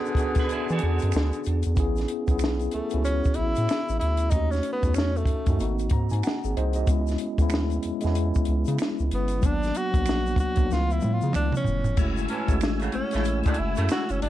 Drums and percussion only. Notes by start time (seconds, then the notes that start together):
0.05 shaker
0.15 kick, closed hi-hat, shaker
0.35 kick, closed hi-hat, shaker
0.40 snare
0.49 closed hi-hat, shaker
0.69 shaker
0.79 closed hi-hat
0.99 closed hi-hat, shaker
1.12 finger snap, shaker
1.17 snare
1.33 closed hi-hat, shaker
1.44 closed hi-hat, shaker
1.63 closed hi-hat, shaker
1.76 kick, closed hi-hat, shaker
1.96 snare, closed hi-hat, shaker
2.08 closed hi-hat
2.28 kick, closed hi-hat, shaker
2.39 finger snap, shaker
2.44 snare
2.59 closed hi-hat, shaker
2.71 closed hi-hat
2.90 closed hi-hat, shaker
3.05 closed hi-hat, shaker
3.24 kick, shaker
3.34 closed hi-hat
3.55 closed hi-hat, shaker
3.69 finger snap, snare, shaker
3.89 shaker
4.01 closed hi-hat
4.17 closed hi-hat, shaker
4.31 kick, closed hi-hat, shaker
4.52 snare, closed hi-hat, shaker
4.63 closed hi-hat
4.83 kick, closed hi-hat, shaker
4.94 finger snap, snare, shaker
5.16 shaker
5.25 kick, closed hi-hat
5.46 kick, closed hi-hat, shaker
5.60 closed hi-hat, shaker
5.79 closed hi-hat, shaker
5.90 kick, closed hi-hat
6.09 closed hi-hat, shaker
6.23 finger snap, snare, shaker
6.44 shaker
6.57 closed hi-hat
6.73 closed hi-hat, shaker
6.87 kick, closed hi-hat, shaker
7.07 snare, closed hi-hat, shaker
7.18 closed hi-hat
7.38 kick, closed hi-hat, shaker
7.50 finger snap, shaker
7.54 snare
7.70 closed hi-hat, shaker
7.83 closed hi-hat
8.01 closed hi-hat, shaker
8.06 snare
8.15 closed hi-hat, shaker
8.35 kick, shaker
8.45 closed hi-hat
8.65 closed hi-hat, shaker
8.79 finger snap, snare, shaker
8.99 shaker
9.11 closed hi-hat
9.28 closed hi-hat, shaker
9.43 kick, closed hi-hat, shaker
9.63 snare, closed hi-hat, shaker
9.74 closed hi-hat, shaker
9.94 kick, closed hi-hat, shaker
10.06 finger snap, snare, shaker
10.27 shaker
10.36 kick, closed hi-hat, shaker
10.56 kick, closed hi-hat, shaker
10.71 snare, shaker
10.91 shaker
11.01 high tom, shaker
11.21 shaker
11.33 finger snap, mid tom, shaker
11.52 mid tom, shaker
11.64 floor tom, shaker
11.84 floor tom, shaker
11.97 kick, crash, shaker
12.17 shaker
12.28 closed hi-hat
12.48 kick, closed hi-hat, shaker
12.61 finger snap, snare, shaker
12.80 closed hi-hat, shaker
12.92 closed hi-hat
13.11 closed hi-hat, shaker
13.16 snare
13.24 closed hi-hat, shaker
13.43 kick, closed hi-hat, shaker
13.54 closed hi-hat
13.76 closed hi-hat, shaker
13.89 finger snap, snare, shaker
14.09 closed hi-hat, shaker
14.22 closed hi-hat